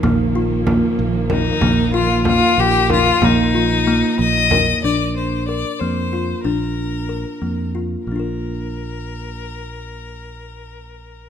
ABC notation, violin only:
X:1
M:5/8
L:1/8
Q:1/4=93
K:Bb
V:1 name="Violin"
z4 E- | E F F G F | E3 e2 | d c d c2 |
B4 z | B4- B- | B4- B |]